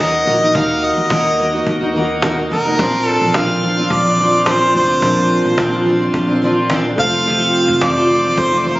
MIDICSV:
0, 0, Header, 1, 7, 480
1, 0, Start_track
1, 0, Key_signature, -2, "major"
1, 0, Tempo, 559180
1, 474, Time_signature, 4, 2, 24, 8
1, 7552, End_track
2, 0, Start_track
2, 0, Title_t, "Tonewheel organ"
2, 0, Program_c, 0, 16
2, 0, Note_on_c, 0, 70, 62
2, 0, Note_on_c, 0, 75, 59
2, 0, Note_on_c, 0, 78, 59
2, 0, Note_on_c, 0, 87, 72
2, 2360, Note_off_c, 0, 70, 0
2, 2362, Note_off_c, 0, 75, 0
2, 2362, Note_off_c, 0, 78, 0
2, 2362, Note_off_c, 0, 87, 0
2, 2399, Note_on_c, 0, 70, 64
2, 2403, Note_on_c, 0, 84, 69
2, 2406, Note_on_c, 0, 74, 57
2, 2407, Note_on_c, 0, 77, 55
2, 5960, Note_off_c, 0, 70, 0
2, 5962, Note_off_c, 0, 84, 0
2, 5963, Note_off_c, 0, 74, 0
2, 5989, Note_on_c, 0, 69, 64
2, 5990, Note_on_c, 0, 84, 74
2, 5991, Note_on_c, 0, 72, 59
2, 7552, Note_off_c, 0, 69, 0
2, 7552, Note_off_c, 0, 72, 0
2, 7552, Note_off_c, 0, 77, 0
2, 7552, Note_off_c, 0, 84, 0
2, 7552, End_track
3, 0, Start_track
3, 0, Title_t, "Harmonica"
3, 0, Program_c, 1, 22
3, 0, Note_on_c, 1, 75, 105
3, 481, Note_on_c, 1, 77, 108
3, 494, Note_off_c, 1, 75, 0
3, 725, Note_on_c, 1, 75, 96
3, 737, Note_off_c, 1, 77, 0
3, 1439, Note_off_c, 1, 75, 0
3, 2170, Note_on_c, 1, 70, 100
3, 2634, Note_off_c, 1, 70, 0
3, 2634, Note_on_c, 1, 69, 100
3, 2884, Note_on_c, 1, 77, 109
3, 2897, Note_off_c, 1, 69, 0
3, 3368, Note_on_c, 1, 74, 101
3, 3381, Note_off_c, 1, 77, 0
3, 3845, Note_on_c, 1, 72, 92
3, 3858, Note_off_c, 1, 74, 0
3, 4079, Note_off_c, 1, 72, 0
3, 4084, Note_on_c, 1, 72, 92
3, 5003, Note_off_c, 1, 72, 0
3, 6004, Note_on_c, 1, 77, 125
3, 6723, Note_on_c, 1, 74, 105
3, 6736, Note_off_c, 1, 77, 0
3, 7206, Note_on_c, 1, 72, 88
3, 7219, Note_off_c, 1, 74, 0
3, 7370, Note_on_c, 1, 74, 79
3, 7383, Note_off_c, 1, 72, 0
3, 7449, Note_on_c, 1, 72, 75
3, 7462, Note_off_c, 1, 74, 0
3, 7525, Note_on_c, 1, 70, 79
3, 7537, Note_off_c, 1, 72, 0
3, 7552, Note_off_c, 1, 70, 0
3, 7552, End_track
4, 0, Start_track
4, 0, Title_t, "Grand piano"
4, 0, Program_c, 2, 0
4, 0, Control_c, 2, 64, 127
4, 0, Note_on_c, 2, 66, 63
4, 0, Note_on_c, 2, 75, 76
4, 197, Note_off_c, 2, 66, 0
4, 206, Note_off_c, 2, 75, 0
4, 215, Note_on_c, 2, 58, 67
4, 231, Note_on_c, 2, 66, 63
4, 248, Note_on_c, 2, 75, 72
4, 1635, Note_off_c, 2, 58, 0
4, 1644, Note_off_c, 2, 66, 0
4, 1652, Note_off_c, 2, 75, 0
4, 1666, Note_on_c, 2, 58, 61
4, 1674, Note_on_c, 2, 66, 52
4, 1684, Note_on_c, 2, 75, 65
4, 2365, Note_off_c, 2, 58, 0
4, 2377, Note_on_c, 2, 58, 66
4, 2394, Note_off_c, 2, 66, 0
4, 2394, Note_on_c, 2, 62, 58
4, 2399, Note_off_c, 2, 75, 0
4, 2404, Control_c, 2, 64, 0
4, 2412, Note_on_c, 2, 72, 69
4, 2566, Control_c, 2, 64, 127
4, 4270, Note_off_c, 2, 58, 0
4, 4278, Note_off_c, 2, 62, 0
4, 4288, Note_off_c, 2, 72, 0
4, 4294, Note_on_c, 2, 58, 62
4, 4313, Note_on_c, 2, 62, 57
4, 4328, Note_on_c, 2, 72, 70
4, 5948, Note_off_c, 2, 58, 0
4, 5958, Note_off_c, 2, 62, 0
4, 5966, Note_off_c, 2, 72, 0
4, 5974, Note_on_c, 2, 57, 71
4, 5990, Note_on_c, 2, 65, 62
4, 6002, Control_c, 2, 64, 0
4, 6009, Note_on_c, 2, 72, 71
4, 6160, Control_c, 2, 64, 127
4, 7552, Note_off_c, 2, 57, 0
4, 7552, Note_off_c, 2, 65, 0
4, 7552, Note_off_c, 2, 72, 0
4, 7552, End_track
5, 0, Start_track
5, 0, Title_t, "Steel-string acoustic guitar"
5, 0, Program_c, 3, 25
5, 0, Note_on_c, 3, 51, 76
5, 0, Note_on_c, 3, 58, 77
5, 1, Note_on_c, 3, 63, 80
5, 5, Note_on_c, 3, 66, 85
5, 216, Note_off_c, 3, 51, 0
5, 224, Note_off_c, 3, 58, 0
5, 226, Note_on_c, 3, 51, 61
5, 234, Note_off_c, 3, 63, 0
5, 235, Note_on_c, 3, 58, 70
5, 239, Note_off_c, 3, 66, 0
5, 244, Note_on_c, 3, 63, 63
5, 251, Note_on_c, 3, 66, 67
5, 338, Note_off_c, 3, 66, 0
5, 348, Note_on_c, 3, 66, 54
5, 350, Note_off_c, 3, 51, 0
5, 353, Note_off_c, 3, 63, 0
5, 354, Note_off_c, 3, 58, 0
5, 363, Note_on_c, 3, 63, 50
5, 372, Note_on_c, 3, 58, 45
5, 459, Note_off_c, 3, 58, 0
5, 464, Note_on_c, 3, 51, 81
5, 466, Note_off_c, 3, 63, 0
5, 469, Note_on_c, 3, 58, 80
5, 471, Note_off_c, 3, 66, 0
5, 476, Note_on_c, 3, 63, 83
5, 483, Note_on_c, 3, 66, 89
5, 934, Note_off_c, 3, 51, 0
5, 944, Note_on_c, 3, 51, 68
5, 949, Note_off_c, 3, 58, 0
5, 949, Note_off_c, 3, 63, 0
5, 952, Note_on_c, 3, 58, 69
5, 954, Note_off_c, 3, 66, 0
5, 959, Note_on_c, 3, 63, 82
5, 964, Note_on_c, 3, 66, 90
5, 1179, Note_off_c, 3, 51, 0
5, 1187, Note_off_c, 3, 58, 0
5, 1189, Note_on_c, 3, 51, 59
5, 1196, Note_off_c, 3, 63, 0
5, 1198, Note_on_c, 3, 58, 59
5, 1199, Note_off_c, 3, 66, 0
5, 1207, Note_on_c, 3, 63, 62
5, 1215, Note_on_c, 3, 66, 64
5, 1295, Note_off_c, 3, 66, 0
5, 1306, Note_on_c, 3, 66, 62
5, 1311, Note_off_c, 3, 51, 0
5, 1311, Note_off_c, 3, 63, 0
5, 1316, Note_off_c, 3, 58, 0
5, 1321, Note_on_c, 3, 63, 53
5, 1331, Note_on_c, 3, 58, 48
5, 1541, Note_off_c, 3, 66, 0
5, 1551, Note_on_c, 3, 66, 64
5, 1552, Note_off_c, 3, 63, 0
5, 1562, Note_off_c, 3, 58, 0
5, 1562, Note_on_c, 3, 63, 57
5, 1574, Note_on_c, 3, 58, 48
5, 1671, Note_off_c, 3, 58, 0
5, 1672, Note_on_c, 3, 51, 65
5, 1673, Note_off_c, 3, 66, 0
5, 1678, Note_off_c, 3, 63, 0
5, 1681, Note_on_c, 3, 58, 73
5, 1690, Note_on_c, 3, 63, 76
5, 1697, Note_on_c, 3, 66, 74
5, 1902, Note_off_c, 3, 51, 0
5, 1909, Note_off_c, 3, 58, 0
5, 1912, Note_on_c, 3, 51, 90
5, 1916, Note_off_c, 3, 63, 0
5, 1919, Note_on_c, 3, 58, 83
5, 1920, Note_off_c, 3, 66, 0
5, 1926, Note_on_c, 3, 63, 86
5, 1931, Note_on_c, 3, 66, 82
5, 2025, Note_off_c, 3, 66, 0
5, 2033, Note_off_c, 3, 51, 0
5, 2036, Note_off_c, 3, 58, 0
5, 2036, Note_on_c, 3, 66, 54
5, 2040, Note_off_c, 3, 63, 0
5, 2050, Note_on_c, 3, 63, 46
5, 2061, Note_on_c, 3, 58, 40
5, 2153, Note_on_c, 3, 51, 64
5, 2155, Note_off_c, 3, 58, 0
5, 2155, Note_off_c, 3, 66, 0
5, 2162, Note_off_c, 3, 63, 0
5, 2165, Note_on_c, 3, 58, 64
5, 2173, Note_on_c, 3, 63, 62
5, 2179, Note_on_c, 3, 66, 71
5, 2263, Note_off_c, 3, 66, 0
5, 2273, Note_off_c, 3, 51, 0
5, 2273, Note_on_c, 3, 66, 51
5, 2277, Note_off_c, 3, 63, 0
5, 2279, Note_off_c, 3, 58, 0
5, 2287, Note_on_c, 3, 63, 53
5, 2298, Note_on_c, 3, 58, 44
5, 2390, Note_on_c, 3, 46, 81
5, 2393, Note_off_c, 3, 66, 0
5, 2396, Note_off_c, 3, 58, 0
5, 2396, Note_on_c, 3, 53, 79
5, 2399, Note_on_c, 3, 60, 90
5, 2400, Note_off_c, 3, 63, 0
5, 2404, Note_on_c, 3, 62, 80
5, 2409, Note_on_c, 3, 65, 84
5, 2862, Note_off_c, 3, 46, 0
5, 2873, Note_on_c, 3, 46, 74
5, 2874, Note_off_c, 3, 53, 0
5, 2876, Note_off_c, 3, 62, 0
5, 2878, Note_on_c, 3, 53, 73
5, 2880, Note_off_c, 3, 60, 0
5, 2883, Note_on_c, 3, 60, 75
5, 2886, Note_on_c, 3, 62, 74
5, 2889, Note_off_c, 3, 65, 0
5, 2893, Note_on_c, 3, 65, 86
5, 3096, Note_off_c, 3, 53, 0
5, 3107, Note_off_c, 3, 60, 0
5, 3107, Note_on_c, 3, 53, 62
5, 3112, Note_off_c, 3, 62, 0
5, 3113, Note_off_c, 3, 46, 0
5, 3117, Note_on_c, 3, 60, 64
5, 3121, Note_off_c, 3, 65, 0
5, 3122, Note_on_c, 3, 62, 67
5, 3131, Note_on_c, 3, 65, 72
5, 3220, Note_off_c, 3, 65, 0
5, 3230, Note_off_c, 3, 53, 0
5, 3231, Note_on_c, 3, 65, 52
5, 3234, Note_off_c, 3, 62, 0
5, 3235, Note_off_c, 3, 60, 0
5, 3245, Note_on_c, 3, 62, 47
5, 3255, Note_on_c, 3, 60, 44
5, 3461, Note_off_c, 3, 65, 0
5, 3471, Note_on_c, 3, 65, 53
5, 3479, Note_off_c, 3, 62, 0
5, 3484, Note_off_c, 3, 60, 0
5, 3488, Note_on_c, 3, 62, 54
5, 3498, Note_on_c, 3, 60, 42
5, 3592, Note_off_c, 3, 60, 0
5, 3592, Note_off_c, 3, 65, 0
5, 3592, Note_on_c, 3, 53, 60
5, 3600, Note_off_c, 3, 62, 0
5, 3602, Note_on_c, 3, 60, 62
5, 3611, Note_on_c, 3, 62, 69
5, 3620, Note_on_c, 3, 65, 71
5, 3824, Note_off_c, 3, 53, 0
5, 3831, Note_off_c, 3, 60, 0
5, 3832, Note_on_c, 3, 46, 81
5, 3834, Note_off_c, 3, 62, 0
5, 3835, Note_on_c, 3, 53, 74
5, 3837, Note_off_c, 3, 65, 0
5, 3841, Note_on_c, 3, 60, 87
5, 3844, Note_on_c, 3, 62, 80
5, 3847, Note_on_c, 3, 65, 82
5, 4057, Note_off_c, 3, 53, 0
5, 4064, Note_off_c, 3, 60, 0
5, 4067, Note_on_c, 3, 53, 64
5, 4072, Note_off_c, 3, 46, 0
5, 4074, Note_off_c, 3, 62, 0
5, 4074, Note_on_c, 3, 60, 64
5, 4080, Note_off_c, 3, 65, 0
5, 4084, Note_on_c, 3, 62, 69
5, 4091, Note_on_c, 3, 65, 69
5, 4175, Note_off_c, 3, 65, 0
5, 4185, Note_on_c, 3, 65, 55
5, 4187, Note_off_c, 3, 62, 0
5, 4190, Note_off_c, 3, 53, 0
5, 4193, Note_off_c, 3, 60, 0
5, 4197, Note_on_c, 3, 62, 49
5, 4207, Note_on_c, 3, 60, 45
5, 4305, Note_off_c, 3, 60, 0
5, 4305, Note_on_c, 3, 46, 75
5, 4309, Note_off_c, 3, 65, 0
5, 4310, Note_off_c, 3, 62, 0
5, 4311, Note_on_c, 3, 53, 81
5, 4316, Note_on_c, 3, 60, 86
5, 4320, Note_on_c, 3, 62, 81
5, 4325, Note_on_c, 3, 65, 88
5, 4774, Note_off_c, 3, 46, 0
5, 4784, Note_on_c, 3, 46, 86
5, 4787, Note_off_c, 3, 53, 0
5, 4787, Note_off_c, 3, 62, 0
5, 4789, Note_off_c, 3, 60, 0
5, 4790, Note_on_c, 3, 53, 83
5, 4793, Note_on_c, 3, 60, 84
5, 4797, Note_off_c, 3, 65, 0
5, 4798, Note_on_c, 3, 62, 89
5, 4800, Note_on_c, 3, 65, 94
5, 5014, Note_off_c, 3, 53, 0
5, 5024, Note_off_c, 3, 60, 0
5, 5024, Note_on_c, 3, 53, 69
5, 5028, Note_off_c, 3, 46, 0
5, 5033, Note_off_c, 3, 62, 0
5, 5035, Note_on_c, 3, 60, 72
5, 5036, Note_off_c, 3, 65, 0
5, 5043, Note_on_c, 3, 62, 77
5, 5049, Note_on_c, 3, 65, 71
5, 5135, Note_off_c, 3, 65, 0
5, 5146, Note_on_c, 3, 65, 60
5, 5148, Note_off_c, 3, 53, 0
5, 5150, Note_off_c, 3, 62, 0
5, 5153, Note_off_c, 3, 60, 0
5, 5160, Note_on_c, 3, 62, 53
5, 5171, Note_on_c, 3, 60, 46
5, 5373, Note_off_c, 3, 65, 0
5, 5383, Note_on_c, 3, 65, 64
5, 5387, Note_off_c, 3, 62, 0
5, 5397, Note_off_c, 3, 60, 0
5, 5397, Note_on_c, 3, 62, 53
5, 5408, Note_on_c, 3, 60, 54
5, 5506, Note_off_c, 3, 60, 0
5, 5507, Note_off_c, 3, 65, 0
5, 5508, Note_on_c, 3, 53, 70
5, 5514, Note_off_c, 3, 62, 0
5, 5516, Note_on_c, 3, 60, 70
5, 5523, Note_on_c, 3, 62, 73
5, 5531, Note_on_c, 3, 65, 80
5, 5741, Note_off_c, 3, 53, 0
5, 5745, Note_off_c, 3, 60, 0
5, 5746, Note_on_c, 3, 46, 82
5, 5750, Note_off_c, 3, 62, 0
5, 5751, Note_on_c, 3, 53, 100
5, 5752, Note_off_c, 3, 65, 0
5, 5755, Note_on_c, 3, 60, 89
5, 5760, Note_on_c, 3, 62, 100
5, 5762, Note_on_c, 3, 65, 94
5, 5856, Note_off_c, 3, 65, 0
5, 5866, Note_on_c, 3, 65, 54
5, 5869, Note_off_c, 3, 46, 0
5, 5870, Note_off_c, 3, 62, 0
5, 5871, Note_off_c, 3, 53, 0
5, 5873, Note_off_c, 3, 60, 0
5, 5880, Note_on_c, 3, 62, 44
5, 5889, Note_on_c, 3, 60, 46
5, 5986, Note_on_c, 3, 53, 68
5, 5989, Note_off_c, 3, 65, 0
5, 5992, Note_off_c, 3, 60, 0
5, 5996, Note_off_c, 3, 62, 0
5, 5996, Note_on_c, 3, 57, 70
5, 6004, Note_on_c, 3, 60, 71
5, 6012, Note_on_c, 3, 65, 73
5, 6095, Note_off_c, 3, 65, 0
5, 6105, Note_on_c, 3, 65, 53
5, 6109, Note_off_c, 3, 53, 0
5, 6109, Note_off_c, 3, 60, 0
5, 6114, Note_off_c, 3, 57, 0
5, 6119, Note_on_c, 3, 60, 54
5, 6126, Note_on_c, 3, 57, 53
5, 6134, Note_on_c, 3, 53, 46
5, 6226, Note_off_c, 3, 53, 0
5, 6228, Note_off_c, 3, 57, 0
5, 6228, Note_off_c, 3, 65, 0
5, 6228, Note_on_c, 3, 41, 77
5, 6233, Note_on_c, 3, 48, 79
5, 6235, Note_off_c, 3, 60, 0
5, 6236, Note_on_c, 3, 53, 82
5, 6238, Note_on_c, 3, 57, 83
5, 6244, Note_on_c, 3, 60, 88
5, 6244, Note_on_c, 3, 65, 88
5, 6694, Note_off_c, 3, 41, 0
5, 6700, Note_off_c, 3, 48, 0
5, 6704, Note_on_c, 3, 41, 76
5, 6705, Note_off_c, 3, 57, 0
5, 6711, Note_on_c, 3, 48, 73
5, 6712, Note_off_c, 3, 53, 0
5, 6715, Note_on_c, 3, 57, 83
5, 6716, Note_on_c, 3, 53, 78
5, 6717, Note_off_c, 3, 60, 0
5, 6719, Note_off_c, 3, 65, 0
5, 6720, Note_on_c, 3, 60, 83
5, 6723, Note_on_c, 3, 65, 81
5, 6939, Note_off_c, 3, 53, 0
5, 6947, Note_off_c, 3, 57, 0
5, 6948, Note_off_c, 3, 41, 0
5, 6949, Note_on_c, 3, 53, 64
5, 6951, Note_off_c, 3, 48, 0
5, 6956, Note_off_c, 3, 60, 0
5, 6957, Note_off_c, 3, 65, 0
5, 6957, Note_on_c, 3, 57, 64
5, 6964, Note_on_c, 3, 60, 69
5, 6973, Note_on_c, 3, 65, 67
5, 7058, Note_off_c, 3, 65, 0
5, 7066, Note_off_c, 3, 60, 0
5, 7068, Note_on_c, 3, 65, 53
5, 7070, Note_off_c, 3, 53, 0
5, 7074, Note_off_c, 3, 57, 0
5, 7076, Note_on_c, 3, 60, 52
5, 7084, Note_on_c, 3, 57, 50
5, 7091, Note_on_c, 3, 53, 46
5, 7296, Note_off_c, 3, 65, 0
5, 7306, Note_off_c, 3, 60, 0
5, 7307, Note_on_c, 3, 65, 57
5, 7313, Note_off_c, 3, 57, 0
5, 7316, Note_on_c, 3, 60, 54
5, 7321, Note_off_c, 3, 53, 0
5, 7324, Note_on_c, 3, 57, 47
5, 7332, Note_on_c, 3, 53, 47
5, 7417, Note_off_c, 3, 53, 0
5, 7427, Note_on_c, 3, 53, 70
5, 7428, Note_off_c, 3, 57, 0
5, 7429, Note_off_c, 3, 65, 0
5, 7434, Note_off_c, 3, 60, 0
5, 7439, Note_on_c, 3, 57, 66
5, 7447, Note_on_c, 3, 60, 63
5, 7453, Note_on_c, 3, 65, 63
5, 7552, Note_off_c, 3, 53, 0
5, 7552, Note_off_c, 3, 57, 0
5, 7552, Note_off_c, 3, 60, 0
5, 7552, Note_off_c, 3, 65, 0
5, 7552, End_track
6, 0, Start_track
6, 0, Title_t, "Upright bass"
6, 0, Program_c, 4, 32
6, 0, Note_on_c, 4, 39, 97
6, 197, Note_off_c, 4, 39, 0
6, 232, Note_on_c, 4, 34, 88
6, 454, Note_off_c, 4, 34, 0
6, 473, Note_on_c, 4, 39, 106
6, 804, Note_off_c, 4, 39, 0
6, 835, Note_on_c, 4, 39, 91
6, 945, Note_off_c, 4, 39, 0
6, 952, Note_on_c, 4, 39, 88
6, 1399, Note_off_c, 4, 39, 0
6, 1430, Note_on_c, 4, 39, 97
6, 2118, Note_off_c, 4, 39, 0
6, 2158, Note_on_c, 4, 29, 89
6, 2377, Note_off_c, 4, 29, 0
6, 2396, Note_on_c, 4, 34, 106
6, 2726, Note_off_c, 4, 34, 0
6, 2757, Note_on_c, 4, 34, 90
6, 2866, Note_off_c, 4, 34, 0
6, 2875, Note_on_c, 4, 34, 95
6, 3320, Note_off_c, 4, 34, 0
6, 3353, Note_on_c, 4, 34, 97
6, 4038, Note_off_c, 4, 34, 0
6, 4077, Note_on_c, 4, 29, 83
6, 4296, Note_off_c, 4, 29, 0
6, 4313, Note_on_c, 4, 34, 111
6, 4644, Note_off_c, 4, 34, 0
6, 4676, Note_on_c, 4, 34, 97
6, 4784, Note_off_c, 4, 34, 0
6, 4795, Note_on_c, 4, 34, 98
6, 5239, Note_off_c, 4, 34, 0
6, 5270, Note_on_c, 4, 34, 101
6, 5956, Note_off_c, 4, 34, 0
6, 5993, Note_on_c, 4, 29, 95
6, 6558, Note_off_c, 4, 29, 0
6, 6592, Note_on_c, 4, 29, 105
6, 6702, Note_off_c, 4, 29, 0
6, 6711, Note_on_c, 4, 29, 100
6, 7156, Note_off_c, 4, 29, 0
6, 7190, Note_on_c, 4, 29, 97
6, 7552, Note_off_c, 4, 29, 0
6, 7552, End_track
7, 0, Start_track
7, 0, Title_t, "Cajon"
7, 472, Note_on_c, 9, 36, 102
7, 557, Note_off_c, 9, 36, 0
7, 946, Note_on_c, 9, 38, 109
7, 953, Note_on_c, 9, 36, 113
7, 1032, Note_off_c, 9, 38, 0
7, 1038, Note_off_c, 9, 36, 0
7, 1430, Note_on_c, 9, 36, 96
7, 1516, Note_off_c, 9, 36, 0
7, 1909, Note_on_c, 9, 38, 112
7, 1913, Note_on_c, 9, 36, 107
7, 1995, Note_off_c, 9, 38, 0
7, 1999, Note_off_c, 9, 36, 0
7, 2395, Note_on_c, 9, 36, 105
7, 2481, Note_off_c, 9, 36, 0
7, 2870, Note_on_c, 9, 38, 109
7, 2875, Note_on_c, 9, 36, 119
7, 2956, Note_off_c, 9, 38, 0
7, 2961, Note_off_c, 9, 36, 0
7, 3351, Note_on_c, 9, 36, 102
7, 3437, Note_off_c, 9, 36, 0
7, 3830, Note_on_c, 9, 38, 110
7, 3833, Note_on_c, 9, 36, 107
7, 3916, Note_off_c, 9, 38, 0
7, 3919, Note_off_c, 9, 36, 0
7, 4312, Note_on_c, 9, 36, 105
7, 4398, Note_off_c, 9, 36, 0
7, 4788, Note_on_c, 9, 38, 114
7, 4793, Note_on_c, 9, 36, 114
7, 4874, Note_off_c, 9, 38, 0
7, 4879, Note_off_c, 9, 36, 0
7, 5269, Note_on_c, 9, 36, 101
7, 5355, Note_off_c, 9, 36, 0
7, 5749, Note_on_c, 9, 38, 110
7, 5752, Note_on_c, 9, 36, 102
7, 5834, Note_off_c, 9, 38, 0
7, 5837, Note_off_c, 9, 36, 0
7, 5992, Note_on_c, 9, 36, 101
7, 6078, Note_off_c, 9, 36, 0
7, 6708, Note_on_c, 9, 38, 108
7, 6713, Note_on_c, 9, 36, 108
7, 6794, Note_off_c, 9, 38, 0
7, 6799, Note_off_c, 9, 36, 0
7, 7190, Note_on_c, 9, 36, 106
7, 7276, Note_off_c, 9, 36, 0
7, 7552, End_track
0, 0, End_of_file